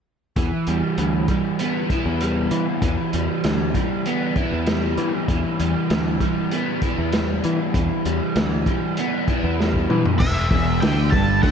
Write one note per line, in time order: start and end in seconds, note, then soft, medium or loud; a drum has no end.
0.36 0.50 E2 medium
0.36 0.98 E3 medium
0.36 kick medium
0.36 closed hi-hat medium
0.67 0.81 E2 medium
0.67 1.29 G3 medium
0.67 closed hi-hat soft
0.98 1.26 D2 medium
0.98 2.52 E3 medium
0.98 closed hi-hat medium
1.28 2.21 G3 soft
1.28 kick medium
1.28 closed hi-hat soft
1.59 4.07 B3 medium
1.59 closed hi-hat medium
1.90 4.37 E4 medium
1.90 kick medium
1.90 closed hi-hat soft
2.06 2.47 E2 medium
2.21 3.14 G3 soft
2.21 closed hi-hat medium
2.51 2.65 E3 medium
2.51 2.83 E3 medium
2.51 closed hi-hat medium
2.82 2.96 E2 medium
2.82 3.45 E3 medium
2.82 kick medium
2.82 closed hi-hat medium
3.13 3.28 E2 medium
3.13 3.75 G3 soft
3.13 closed hi-hat medium
3.44 3.72 D2 medium
3.44 4.99 E3 medium
3.44 snare medium
3.44 closed hi-hat medium
3.74 4.68 G3 medium
3.74 kick medium
3.74 closed hi-hat medium
4.06 6.52 B3 medium
4.06 closed hi-hat medium
4.36 6.82 E4 medium
4.36 kick medium
4.36 closed hi-hat soft
4.53 4.94 E2 medium
4.66 5.60 G3 medium
4.66 snare medium
4.66 closed hi-hat medium
4.98 5.12 E3 medium
4.98 5.30 E3 medium
4.98 closed hi-hat soft
5.28 5.42 E2 medium
5.28 5.91 E3 medium
5.28 kick medium
5.28 closed hi-hat medium
5.60 5.73 E2 medium
5.60 6.21 G3 medium
5.60 closed hi-hat medium
5.90 6.18 D2 medium
5.90 7.43 E3 medium
5.90 snare medium
5.90 closed hi-hat medium
6.20 7.13 G3 medium
6.20 kick medium
6.20 closed hi-hat medium
6.51 8.06 B3 medium
6.51 closed hi-hat medium
6.82 8.37 E4 medium
6.82 kick medium
6.82 closed hi-hat medium
6.98 7.40 E2 medium
7.13 8.04 G3 medium
7.13 snare medium
7.13 closed hi-hat medium
7.44 7.74 E3 medium
7.44 7.58 E3 medium
7.44 closed hi-hat soft
7.74 7.88 E2 medium
7.74 8.35 E3 medium
7.74 kick medium
7.74 closed hi-hat medium
8.05 8.19 E2 medium
8.05 8.66 G3 medium
8.05 closed hi-hat medium
8.36 8.64 D2 medium
8.36 9.90 E3 medium
8.36 snare medium
8.36 closed hi-hat medium
8.66 9.59 G3 medium
8.66 kick medium
8.66 closed hi-hat medium
8.97 10.21 B3 medium
8.97 closed hi-hat medium
9.28 10.21 E4 medium
9.28 kick medium
9.28 closed hi-hat soft
9.44 9.85 E2 medium
9.60 10.21 G3 medium
9.60 snare soft
9.74 kick soft
9.90 10.04 E3 medium
9.90 10.21 E3 medium
9.90 mid tom medium
10.06 floor tom medium
10.19 10.49 E1 medium
10.19 10.46 E2 medium
10.19 10.83 E5 medium
10.19 kick medium
10.19 crash loud
10.51 10.80 E1 medium
10.51 10.82 E2 loud
10.51 kick loud
10.51 open hi-hat medium
10.80 11.11 D2 medium
10.80 11.13 D3 medium
10.80 11.10 G5 medium
10.80 snare loud
10.80 open hi-hat medium
11.11 11.41 G1 medium
11.11 11.43 G2 medium
11.11 11.42 A5 medium
11.11 kick medium
11.11 open hi-hat medium
11.43 11.51 D2 medium
11.43 11.51 D3 loud
11.43 11.51 G5 medium
11.43 kick loud
11.43 open hi-hat medium